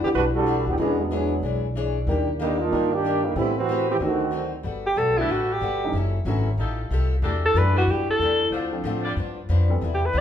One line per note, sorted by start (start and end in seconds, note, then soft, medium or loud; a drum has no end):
0.03 0.14 F2 medium
0.03 0.09 D3 medium
0.03 0.09 F#3 medium
0.03 0.09 B3 medium
0.03 0.09 G4 medium
0.15 0.64 B1 medium
0.15 0.37 E3 soft
0.15 0.24 G3 medium
0.15 0.37 G3 soft
0.15 0.24 D4 medium
0.15 0.38 D4 soft
0.15 0.24 F#4 medium
0.15 0.38 F#4 soft
0.15 0.24 B4 loud
0.34 0.65 G3 medium
0.34 0.65 D4 medium
0.34 0.65 F#4 medium
0.34 0.65 A4 loud
0.46 0.69 E3 medium
0.46 0.69 G3 medium
0.46 0.69 D4 medium
0.46 0.70 F#4 medium
0.67 0.77 D2 medium
0.67 0.79 D3 medium
0.67 0.79 F#3 medium
0.67 0.77 B3 medium
0.67 0.79 G4 medium
0.78 1.40 E2 medium
0.78 1.01 E3 medium
0.78 0.98 E3 medium
0.78 0.98 G#3 medium
0.78 0.98 B3 medium
0.78 0.98 C#4 medium
0.78 0.98 D4 medium
0.78 1.01 D4 soft
0.78 0.98 D4 medium
0.78 0.98 E4 medium
0.78 0.98 F#4 medium
0.78 1.02 G#4 medium
0.82 1.02 C#5 medium
0.99 1.44 F#3 medium
0.99 1.44 G#3 medium
0.99 1.44 B3 medium
0.99 1.44 D4 medium
1.11 1.33 E3 medium
1.11 1.60 E3 medium
1.11 1.61 G#3 soft
1.11 1.33 D4 medium
1.11 1.60 D4 soft
1.11 1.61 E4 medium
1.11 1.34 G#4 medium
1.11 1.61 C#5 medium
1.11 1.34 C#5 medium
1.42 2.04 B1 medium
1.42 1.65 E3 medium
1.42 1.66 D4 medium
1.42 1.66 G#4 medium
1.42 1.67 C#5 medium
1.75 1.97 E3 medium
1.75 1.98 D4 medium
1.75 1.98 G#4 medium
1.75 1.98 C#5 medium
2.07 2.69 D#2 medium
2.07 2.30 D#3 medium
2.07 2.27 D#3 medium
2.07 2.27 G3 medium
2.07 2.27 A#3 medium
2.07 2.30 A#3 medium
2.07 2.27 D4 medium
2.07 2.31 D4 medium
2.07 2.27 G4 medium
2.11 2.31 G4 medium
2.39 2.59 D3 medium
2.39 2.62 D#3 medium
2.39 2.59 G3 medium
2.39 2.59 A#3 medium
2.39 2.62 A#3 medium
2.39 2.63 D4 medium
2.39 2.58 D#4 loud
2.39 2.63 G4 medium
2.59 2.92 A#3 medium
2.59 2.92 D4 medium
2.59 2.92 D#4 medium
2.59 2.93 F4 loud
2.71 2.91 D#3 medium
2.71 2.94 D#3 medium
2.71 2.91 G3 medium
2.71 2.90 A#3 medium
2.71 2.95 A#3 medium
2.71 2.91 D4 medium
2.71 2.95 D4 soft
2.71 2.91 A#4 medium
2.76 2.96 G4 medium
2.92 3.25 D#3 medium
2.92 3.24 A#3 medium
2.92 3.25 D4 loud
2.92 3.25 G4 loud
3.05 3.26 D#3 medium
3.05 3.27 A#3 medium
3.05 3.27 D4 medium
3.05 3.28 G4 medium
3.25 3.37 D3 medium
3.25 3.36 G3 medium
3.25 3.37 A#3 medium
3.25 3.37 D#4 medium
3.36 3.97 A2 medium
3.36 3.55 E3 medium
3.36 3.56 G3 medium
3.36 3.55 A3 medium
3.36 3.58 A3 medium
3.36 3.55 B3 medium
3.36 3.56 B3 medium
3.36 3.55 C4 medium
3.36 3.56 C4 medium
3.36 3.59 C4 soft
3.36 3.56 E4 loud
3.36 3.55 G4 medium
3.36 3.60 G4 medium
3.36 3.60 B4 medium
3.57 3.87 E3 medium
3.57 3.87 B3 medium
3.57 3.87 C4 medium
3.57 3.88 F#4 loud
3.69 3.91 A3 medium
3.69 3.91 C4 medium
3.69 3.92 G4 medium
3.69 3.92 B4 medium
3.91 3.96 E3 medium
3.91 3.96 B3 medium
3.91 3.96 C4 medium
3.91 3.96 G4 medium
3.99 4.62 D2 medium
3.99 4.22 D3 soft
3.99 4.20 D#3 medium
3.99 4.23 F#3 medium
3.99 4.20 A3 medium
3.99 4.23 C4 soft
3.99 4.20 C4 medium
3.99 4.20 D4 medium
3.99 4.24 D#4 medium
3.99 4.20 F#4 medium
4.04 4.52 D#3 medium
4.04 4.52 A3 medium
4.04 4.52 C4 medium
4.04 4.52 F#4 medium
4.31 4.54 D3 medium
4.31 4.54 F#3 medium
4.31 4.55 C4 medium
4.31 4.56 D#4 medium
4.63 4.96 G1 medium
4.63 4.86 G3 medium
4.63 4.87 B3 medium
4.63 4.87 F#4 medium
4.63 4.88 A4 medium
4.86 4.99 G4 medium
4.96 5.28 B1 medium
4.96 5.19 G3 medium
4.96 5.19 B3 medium
4.96 5.20 F#4 medium
4.96 5.20 A4 medium
5.18 5.29 D3 medium
5.18 5.29 G3 medium
5.18 5.60 G3 medium
5.18 5.29 A3 medium
5.18 5.29 B3 medium
5.18 5.60 B3 medium
5.18 5.33 E4 medium
5.18 5.29 F#4 medium
5.18 5.60 F#4 medium
5.18 5.61 A4 loud
5.29 5.61 A1 medium
5.29 5.51 G3 soft
5.29 5.52 B3 medium
5.29 5.54 F#4 medium
5.29 5.53 F#4 soft
5.29 5.53 A4 medium
5.53 5.96 G4 medium
5.60 5.92 G1 medium
5.60 5.83 G3 medium
5.60 5.84 B3 medium
5.60 5.84 F#4 medium
5.60 5.85 A4 medium
5.84 5.94 E3 medium
5.84 5.94 F#3 medium
5.84 5.94 A3 medium
5.84 5.94 C#4 medium
5.84 5.94 D#4 medium
5.93 6.24 F#1 medium
5.93 6.16 F#3 medium
5.93 6.17 C#4 medium
5.93 6.17 E4 medium
5.97 6.18 A4 medium
6.25 6.57 G#1 medium
6.25 6.45 E3 medium
6.25 6.48 F#3 medium
6.25 6.46 F#3 medium
6.25 6.46 A3 medium
6.25 6.48 C#4 medium
6.25 6.46 C#4 medium
6.25 6.49 E4 medium
6.25 6.46 F#4 medium
6.25 6.49 A4 medium
6.58 6.90 A1 medium
6.58 6.81 F3 medium
6.58 7.08 G3 medium
6.58 7.08 D#4 medium
6.58 6.81 D#4 medium
6.58 7.08 F4 medium
6.58 6.82 G4 medium
6.58 7.08 A4 medium
6.62 6.82 A4 medium
6.90 7.21 C2 medium
6.90 7.13 F3 medium
6.90 7.14 D#4 medium
6.90 7.14 G4 medium
6.90 7.14 A4 medium
7.22 7.54 E2 medium
7.22 7.45 E3 soft
7.22 7.72 G3 medium
7.22 7.46 A3 medium
7.22 7.72 D4 medium
7.22 7.46 D4 medium
7.22 7.72 F#4 medium
7.22 7.46 G4 medium
7.22 7.72 A4 loud
7.45 7.59 A4 medium
7.54 7.86 F#2 medium
7.54 7.77 E3 medium
7.54 8.05 E3 soft
7.54 8.05 A3 soft
7.54 7.78 A3 medium
7.54 8.05 D4 soft
7.54 7.78 D4 medium
7.54 8.05 F#4 soft
7.54 8.05 G4 soft
7.54 7.78 G4 medium
7.54 7.77 B4 loud
7.76 7.84 G3 medium
7.76 7.84 D4 medium
7.76 7.84 F#4 medium
7.76 7.92 F#4 medium
7.76 7.84 B4 medium
7.87 8.07 G2 medium
7.87 8.10 E3 soft
7.87 8.10 A3 soft
7.87 8.11 D4 medium
7.91 8.10 G4 medium
7.91 8.12 G4 medium
8.08 8.50 A4 medium
8.08 muted upright bass stroke soft
8.19 8.50 E2 medium
8.19 8.42 E3 medium
8.19 8.43 A3 medium
8.19 8.43 D4 medium
8.23 8.44 G4 medium
8.51 8.83 D2 medium
8.51 8.74 D3 medium
8.51 9.01 A3 medium
8.51 8.75 A3 medium
8.51 8.75 C4 medium
8.51 9.01 D4 medium
8.51 9.01 F4 medium
8.51 9.01 C5 medium
8.56 8.76 F4 medium
8.72 9.14 F3 medium
8.72 9.14 A3 medium
8.72 9.15 C4 soft
8.72 9.15 D4 medium
8.72 9.15 A4 medium
8.84 9.15 A2 medium
8.84 9.06 D3 medium
8.84 9.07 A3 medium
8.84 9.07 C4 medium
8.84 9.08 F4 medium
9.04 9.13 G3 medium
9.04 9.12 D4 medium
9.04 9.12 F4 medium
9.04 9.12 D5 medium
9.17 9.48 G2 medium
9.17 9.39 G2 medium
9.17 9.39 F3 medium
9.17 9.40 B3 medium
9.17 9.40 D4 medium
9.49 9.80 F2 medium
9.49 9.71 G2 medium
9.49 9.71 F3 medium
9.49 9.71 B3 medium
9.49 9.72 D4 medium
9.70 9.80 E3 medium
9.70 9.80 G3 medium
9.70 9.81 B3 medium
9.70 9.81 C4 medium
9.70 9.80 A4 medium
9.81 10.13 E2 medium
9.81 10.03 C3 medium
9.81 10.04 G3 medium
9.81 10.04 B3 medium
9.81 10.05 E4 medium
9.94 10.07 G4 medium
10.05 10.19 B4 medium
10.13 10.21 D2 medium
10.13 10.21 C3 medium
10.13 10.21 G3 medium
10.13 10.21 B3 medium
10.13 10.21 E4 medium